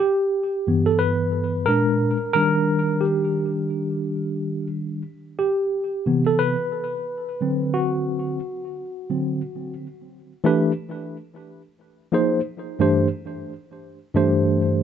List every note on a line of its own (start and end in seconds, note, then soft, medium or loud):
0.00 0.90 G4 medium
0.67 1.64 G2 medium
0.67 1.65 E3 medium
0.67 1.65 B3 medium
0.86 0.99 A4 medium
0.99 1.69 B4 medium
1.66 2.16 A#2 medium
1.66 2.16 G#3 soft
1.66 2.17 D4 medium
1.66 2.32 A#4 loud
2.33 5.01 D#3 medium
2.33 5.02 G3 soft
2.33 5.02 D4 medium
2.33 3.04 A#4 loud
3.01 4.67 G4 medium
5.39 6.24 G4 medium
6.06 6.54 C3 medium
6.06 6.55 E3 medium
6.06 6.55 B3 medium
6.27 6.40 A4 medium
6.39 7.79 B4 loud
7.41 8.38 D3 medium
7.41 8.39 F#3 soft
7.41 8.39 C4 medium
7.74 9.73 F#4 medium
9.10 9.40 D3 soft
9.10 9.41 F#3 soft
9.10 9.41 C4 medium
10.44 10.71 E3 medium
10.44 10.71 A3 medium
10.44 10.71 D4 medium
10.44 10.72 G4 medium
10.44 10.72 B4 medium
12.12 12.39 F3 medium
12.12 12.39 A#3 medium
12.12 12.40 D#4 medium
12.12 12.40 G#4 medium
12.12 12.40 C5 medium
12.79 13.06 G2 medium
12.79 13.06 E3 medium
12.79 13.07 A3 medium
12.79 13.07 D4 medium
12.79 13.07 G4 medium
12.79 13.07 C5 medium
14.14 14.83 G2 medium
14.14 14.83 E3 medium
14.14 14.83 A3 medium
14.14 14.83 D4 medium
14.14 14.83 G4 medium
14.14 14.83 C5 medium